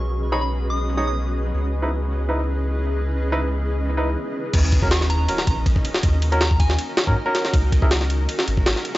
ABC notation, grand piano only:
X:1
M:4/4
L:1/16
Q:1/4=160
K:D#phr
V:1 name="Grand piano"
z3 [DGc] z6 [DGc] z4 z | z3 [DEB] z4 [DEB] z6 z | z3 [DEB] z6 [DEB] z4 z | z3 [CFA] z4 [CFA] z6 z |
z3 [CFA] z6 z [CFA] z [CFA]3 | z3 [EGA] z12 |]